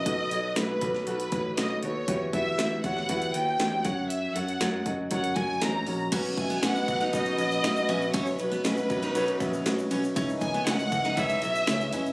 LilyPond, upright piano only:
<<
  \new Staff \with { instrumentName = "Upright piano" } { \time 4/4 \key b \major \tempo 4 = 119 <dis' fis' a' b'>8 <dis' fis' a' cis''>8 <dis' fis' a' b'>8 <dis' fis' a' cis''>8 <dis' fis' a' b'>8 <dis' fis' a' cis''>8 <dis' fis' a' cis''>8 <dis' fis' a' b'>8 | <e' fis' g' b'>8 <e' fis' g' b'>8 <e' fis' g' b'>8 <e' fis' g' cis''>8 <e' fis' g' b'>8 <e' fis' g' b'>8 <e' fis' g' cis''>8 <cis' fis' ais' cis''>8~ | <cis' fis' ais' cis''>8 <cis' fis' ais' cis''>8 <cis' fis' ais' cis''>8 <cis' fis' ais' dis''>8 <cis' fis' ais' cis''>8 <cis' fis' ais' cis''>8 <cis' fis' ais' cis''>8 <cis' fis' ais' cis''>8 | <cis' fis' b' cis''>8 <cis' fis' b' e''>8 <cis' fis' b' dis''>8 <cis' fis' b' dis''>8 <cis' fis' b' dis''>8 <cis' fis' b' cis''>8 <cis' fis' b' e''>8 <cis' fis' b' e''>8 |
<cis' fis' b' e''>8 <cis' fis' b' cis''>8 <cis' fis' b' dis''>8 <cis' fis' b' cis''>8 <cis' fis' b' cis''>8 <cis' fis' b' e''>8 <cis' fis' b' cis''>8 <cis' fis' b' cis''>8 | <e' gis' b' cis''>8 <e' gis' b' cis''>8 <e' gis' b' cis''>8 <e' gis' b' dis''>8 <e' gis' b' cis''>8 <e' gis' b' cis''>8 <e' gis' b' cis''>8 <e' gis' b' dis''>8 | }
  \new Staff \with { instrumentName = "Upright piano" } { \clef bass \time 4/4 \key b \major b,4. r2 r8 | e4. r2 r8 | r1 | b,4. r2 r8 |
b,4. r2 r8 | cis4. r2 r8 | }
>>